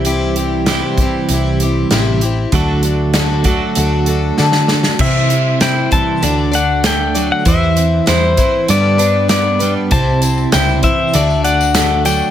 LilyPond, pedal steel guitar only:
\new Staff \with { instrumentName = "Pedal steel guitar" } { \time 4/4 \key c \lydian \tempo 4 = 97 r1 | r1 | e''4 g''8 a''4 fis''8 g''8. fis''16 | e''4 c''4 d''4 d''8. r16 |
a''4 g''8 e''4 fis''4 g''8 | }